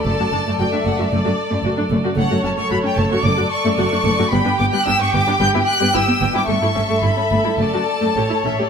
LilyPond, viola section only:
\new Staff \with { instrumentName = "Viola section" } { \time 4/4 \key d \major \tempo 4 = 112 a16 <a fis'>16 <a d'>16 a16 <a fis'>16 <a d'>16 a16 <a fis'>16 a16 <a fis'>16 r16 a16 <a fis'>16 <a d'>16 a16 <a fis'>16 | a16 <a fis'>16 <a cis'>16 a16 <a fis'>16 <a cis'>16 a16 <a fis'>16 a16 <a fis'>16 r16 a16 <a fis'>16 <a d'>16 a16 <a fis'>16 | <g b>16 <b d'>16 b16 <g b>16 <b d'>16 b16 <g b>16 <b d'>16 <g b>16 <b e'>16 r16 <g b>16 <b e'>16 b16 <g b>16 <b e'>16 | a16 <a e'>16 <a cis'>16 a16 <a e'>16 <a cis'>16 a16 <a e'>16 a16 <a fis'>16 r16 a16 <a g'>16 <a e'>16 <a cis'>16 <a g'>16 | }